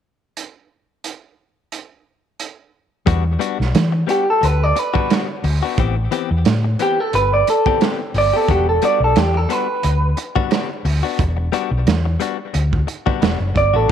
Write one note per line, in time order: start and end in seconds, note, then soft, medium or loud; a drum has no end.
0.37 closed hi-hat medium
1.04 closed hi-hat medium
1.72 closed hi-hat medium
2.40 closed hi-hat medium
3.06 3.36 E2 medium
3.06 3.25 G3 medium
3.06 3.25 B3 medium
3.06 3.24 D4 medium
3.06 3.24 F#4 medium
3.06 kick loud
3.06 closed hi-hat medium
3.25 muted clean electric guitar stroke soft
3.39 3.59 G3 medium
3.39 3.59 B3 medium
3.39 3.58 D4 medium
3.39 3.58 F#4 loud
3.39 closed hi-hat medium
3.59 3.72 B1 medium
3.59 muted clean electric guitar stroke soft
3.59 snare soft
3.75 4.03 E3 medium
3.75 snare loud
3.75 closed hi-hat medium
3.92 muted clean electric guitar stroke soft
4.07 4.26 G3 medium
4.07 4.26 B3 medium
4.07 4.25 D4 medium
4.07 4.25 F#4 medium
4.07 4.28 G4 medium
4.07 closed hi-hat medium
4.26 muted clean electric guitar stroke soft
4.30 4.45 A4 medium
4.41 4.71 D2 medium
4.41 4.63 B4 medium
4.41 muted clean electric guitar stroke soft
4.41 closed hi-hat medium
4.63 4.79 D5 medium
4.76 5.11 B4 medium
4.76 muted clean electric guitar stroke soft
4.76 closed hi-hat medium
4.94 5.08 G3 medium
4.94 5.09 B3 medium
4.94 5.09 D4 medium
4.94 5.09 F#4 medium
4.94 kick medium
5.09 5.28 G3 medium
5.09 5.28 B3 medium
5.09 5.28 D4 medium
5.09 5.27 F#4 medium
5.09 snare loud
5.09 closed hi-hat medium
5.28 muted clean electric guitar stroke soft
5.44 5.60 D2 medium
5.44 muted clean electric guitar stroke soft
5.44 open hi-hat medium
5.63 5.78 B3 soft
5.63 5.78 D4 soft
5.63 5.78 F#4 medium
5.78 6.06 A1 medium
5.78 5.96 E3 medium
5.78 5.97 B3 medium
5.78 5.96 C4 medium
5.78 5.95 G4 medium
5.78 kick loud
5.78 closed hi-hat medium
5.97 muted clean electric guitar stroke medium
6.11 6.30 E3 medium
6.11 6.30 B3 medium
6.11 6.30 C4 medium
6.11 6.30 G4 medium
6.11 closed hi-hat medium
6.31 6.43 E2 medium
6.31 muted clean electric guitar stroke medium
6.45 6.74 A2 medium
6.45 snare loud
6.45 closed hi-hat medium
6.64 muted clean electric guitar stroke soft
6.79 6.98 E3 medium
6.79 6.99 B3 medium
6.79 6.98 C4 medium
6.79 6.97 G4 medium
6.79 7.00 G4 medium
6.79 closed hi-hat medium
6.99 7.14 A4 medium
6.99 muted clean electric guitar stroke soft
7.13 7.42 G1 medium
7.13 7.32 B4 medium
7.13 muted clean electric guitar stroke soft
7.13 closed hi-hat medium
7.34 7.47 D5 medium
7.47 7.81 A4 medium
7.47 muted clean electric guitar stroke soft
7.47 closed hi-hat medium
7.66 7.80 E3 medium
7.66 7.82 B3 medium
7.66 7.82 C4 medium
7.66 7.81 G4 medium
7.66 kick medium
7.81 8.00 E3 medium
7.81 8.01 B3 medium
7.81 8.00 C4 medium
7.81 8.00 G4 medium
7.81 snare loud
7.81 closed hi-hat medium
8.01 muted clean electric guitar stroke soft
8.14 8.30 G1 medium
8.14 8.35 D5 medium
8.14 muted clean electric guitar stroke soft
8.14 open hi-hat medium
8.34 8.49 B3 soft
8.34 8.49 C4 soft
8.34 8.49 G4 medium
8.34 8.50 A4 medium
8.48 8.77 E1 medium
8.48 8.68 G3 medium
8.48 8.68 B3 medium
8.48 8.68 D4 medium
8.48 8.67 F#4 medium
8.48 8.68 G4 medium
8.48 kick loud
8.48 closed hi-hat medium
8.68 8.83 A4 medium
8.68 muted clean electric guitar stroke soft
8.82 9.01 G3 medium
8.82 9.01 B3 medium
8.82 9.01 D4 medium
8.82 9.00 F#4 medium
8.82 9.02 D5 medium
8.82 closed hi-hat medium
9.00 9.13 B1 medium
9.00 9.19 A4 medium
9.00 muted clean electric guitar stroke soft
9.16 9.45 E2 medium
9.16 9.37 G4 medium
9.16 snare loud
9.16 closed hi-hat medium
9.34 9.52 A4 medium
9.34 muted clean electric guitar stroke soft
9.49 9.68 G3 medium
9.49 9.68 B3 medium
9.49 9.68 D4 medium
9.49 9.67 F#4 medium
9.49 10.17 B4 medium
9.49 closed hi-hat medium
9.68 muted clean electric guitar stroke soft
9.83 10.13 D2 medium
9.83 muted clean electric guitar stroke soft
9.83 closed hi-hat medium
10.17 muted clean electric guitar stroke soft
10.17 closed hi-hat medium
10.36 10.49 G3 medium
10.36 10.50 B3 medium
10.36 10.51 D4 medium
10.36 10.51 F#4 medium
10.36 kick medium
10.51 10.70 G3 medium
10.51 10.70 B3 medium
10.51 10.69 D4 medium
10.51 10.68 F#4 medium
10.51 snare loud
10.51 closed hi-hat medium
10.70 muted clean electric guitar stroke soft
10.85 11.01 D2 medium
10.85 muted clean electric guitar stroke soft
10.85 open hi-hat medium
11.03 11.24 B3 soft
11.03 11.23 D4 soft
11.03 11.23 F#4 medium
11.19 11.48 E1 medium
11.19 kick loud
11.19 closed hi-hat medium
11.37 muted clean electric guitar stroke soft
11.52 11.71 G3 medium
11.52 11.71 B3 medium
11.52 11.71 D4 loud
11.52 11.70 F#4 loud
11.52 closed hi-hat medium
11.71 11.84 B1 medium
11.71 muted clean electric guitar stroke soft
11.87 12.15 E2 medium
11.87 snare loud
11.87 closed hi-hat medium
12.05 muted clean electric guitar stroke soft
12.20 12.39 G3 medium
12.20 12.38 B3 medium
12.20 12.38 D4 medium
12.20 12.37 F#4 medium
12.20 closed hi-hat medium
12.38 muted clean electric guitar stroke soft
12.54 12.83 D2 medium
12.54 muted clean electric guitar stroke soft
12.54 closed hi-hat medium
12.73 kick medium
12.87 muted clean electric guitar stroke soft
12.87 closed hi-hat medium
13.06 13.20 G3 medium
13.06 13.20 B3 medium
13.06 13.21 D4 medium
13.06 13.22 F#4 medium
13.06 kick medium
13.21 13.39 E1 medium
13.21 13.40 G3 medium
13.21 13.40 B3 medium
13.21 13.39 D4 medium
13.21 13.39 F#4 medium
13.21 snare loud
13.21 closed hi-hat medium
13.40 13.54 F#1 medium
13.40 muted clean electric guitar stroke soft
13.54 13.73 G1 medium
13.54 13.75 D5 medium
13.54 muted clean electric guitar stroke soft
13.54 kick medium
13.54 closed hi-hat medium
13.74 13.88 A1 medium
13.74 13.88 B3 soft
13.74 13.89 D4 soft
13.74 13.89 F#4 soft
13.74 13.90 A4 medium
13.89 13.92 E3 medium